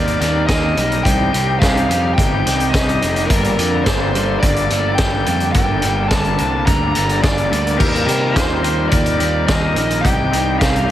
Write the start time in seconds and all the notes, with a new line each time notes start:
Already playing: D#2 D#3 G3 A#3 C4 D#4 G4 A#4 D5
0.07 closed hi-hat
0.20 D#2 D#3 G3 A#3 C4 D#4 G4 A#4, snare, closed hi-hat
0.47 D#2 D#3 G3 A#3 C4 D#4 A#4 D#5, kick, snare, closed hi-hat
0.51 G4
0.76 B1 D#3 G3 A#3 C4 D#4 G4 A#4, closed hi-hat
0.92 closed hi-hat
1.03 C2 C3 G3 C4 D#4 G4 G5, kick, closed hi-hat
1.32 C2 C3 G3 C4 D#4 G4, closed hi-hat
1.59 C2 C3 G3 C4 D#4 G4 F5, kick, snare, closed hi-hat
1.77 closed hi-hat
1.87 F2 C3 G3 C4 D#4 G4, closed hi-hat
2.14 G1 C3 G3 C4 D#4 G4 G5, kick
2.19 closed hi-hat
2.44 C2 C3 G3 C4 D#4 G4, snare, closed hi-hat
2.60 closed hi-hat
2.70 C2 D#5
2.74 C3 G3 C4 D#4 G4, kick, snare, closed hi-hat
2.89 closed hi-hat
3.02 F1 C3 G3 C4 D#4 G4, closed hi-hat
3.16 closed hi-hat
3.26 G1 G2 D3 G3 A#3 D4 A4 A#4, kick, closed hi-hat
3.44 closed hi-hat
3.57 F2 G2 D3 G3 A#3 D4 A4, closed hi-hat
3.84 G1 G2 D3 G3 A#3 D4 A4 C5, kick, snare, closed hi-hat
4.14 G2 D3 G3 A#3 D4 A4, closed hi-hat
4.40 G1 G2 D3 G3 A#3 D4 A4 D5, kick, closed hi-hat
4.56 closed hi-hat
4.70 G1 G2 D3 G3 A#3 D4 A4, closed hi-hat
4.95 G1 G3 A#3 G5, kick, snare, closed hi-hat
4.99 G2 D3 D4
5.26 F2 G2 D3 G3 A#3 D4 A4, closed hi-hat
5.40 closed hi-hat
5.52 G1 G2 D3 G3 D4 G5, kick, closed hi-hat
5.56 A#3 A4
5.82 G1 G2 D3 G3 A#3 D4 A4, closed hi-hat
6.08 G1 G2 D3 A5, kick, snare, closed hi-hat
6.13 G3 A#3 D4 A4
6.24 closed hi-hat
6.38 C2 G2 D3 G3 A#3 D4 A4, closed hi-hat
6.66 D2 G2 D3 G3 A#3 D4 A4 A#5, kick, closed hi-hat
6.95 G1 G2 D3 G3 A#3 D4 A4, closed hi-hat
7.09 closed hi-hat
7.21 G1 G2 D3 G3 A#3 D4 A4 D5, kick, snare, closed hi-hat
7.38 closed hi-hat
7.50 D2 G2 D3 G3 A#3 D4 A4, closed hi-hat
7.67 closed hi-hat
7.76 D#3 G3 C4 G4 A#4
7.80 D#2 A#3 D#4, kick, crash
7.95 closed hi-hat
8.05 C3 D#3 G3 C4 G4 A#4, closed hi-hat
8.09 A#3 D#4
8.32 D#3 G3 C4 F4 G4 A#4 C5
8.36 D#2 A#3 D#4, kick, snare, closed hi-hat
8.61 D#3 G3 A#3 C4 D#4 G4 A#4, closed hi-hat
8.89 D#2 D#3 G3 C4 G4 A#4 D5, kick, closed hi-hat
8.93 G3 A#3 D#4
9.06 closed hi-hat
9.17 D#2 D#3 G3 A#3 C4 D#4 G4 A#4, closed hi-hat
9.46 D#2 D#3 G3 A#3 C4 D#4 G4 A#4 D#5, kick, snare, closed hi-hat
9.74 A#1 D#3 G3 A#3 C4 G4 A#4, closed hi-hat
9.79 D#4
9.90 closed hi-hat
10.01 C2 C3 G3 C4 D#4 G4 G5, kick, closed hi-hat
10.31 C2 C3 G3 C4 D#4 G4, closed hi-hat
10.57 C2 C3 G3 C4 D#4 G4 F5, kick, closed hi-hat
10.62 G3 C4 D#4, snare
10.76 closed hi-hat
10.87 C3 G3 C4 D#4